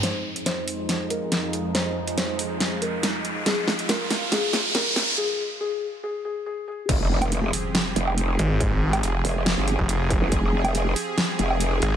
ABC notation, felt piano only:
X:1
M:4/4
L:1/8
Q:1/4=140
K:Fm
V:1 name="Felt piano"
c z c3 B3 | c z c3 B3 | A z B2 A z B2 | A z A z A A A A |
z8 | z8 | z8 |]